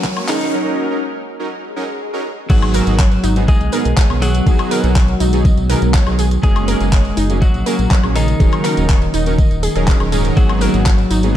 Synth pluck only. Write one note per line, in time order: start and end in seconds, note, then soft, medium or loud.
0.04 0.12 C#5 medium
0.28 0.40 G#4 medium
2.50 2.62 G#4 medium
2.74 2.86 A#4 loud
2.99 3.07 C#5 medium
3.24 3.35 D#4 medium
3.48 3.56 D#5 medium
3.73 3.85 A#4 loud
3.97 4.05 C#5 medium
4.22 4.34 G#4 medium
4.46 4.58 G#4 medium
4.71 4.83 A#4 loud
4.96 5.04 C#5 medium
5.20 5.32 D#4 medium
5.45 5.53 D#5 medium
5.70 5.81 A#4 loud
5.94 6.02 C#5 medium
6.19 6.31 G#4 medium
6.43 6.55 G#4 medium
6.68 6.80 A#4 loud
6.93 7.01 C#5 medium
7.17 7.29 D#4 medium
7.42 7.50 D#5 medium
7.66 7.78 A#4 loud
7.91 7.99 C#5 medium
8.15 8.27 G#4 medium
8.40 8.52 G#4 medium
8.65 8.77 A#4 loud
8.89 8.97 C#5 medium
9.14 9.26 D#4 medium
9.38 9.46 D#5 medium
9.63 9.71 G#4 medium
9.76 9.86 G#4 medium
9.88 9.96 G#4 loud
10.12 10.20 G#4 medium
10.37 10.49 G#4 medium
10.61 10.73 A#4 loud
10.86 10.94 C#5 medium
11.11 11.22 D#4 medium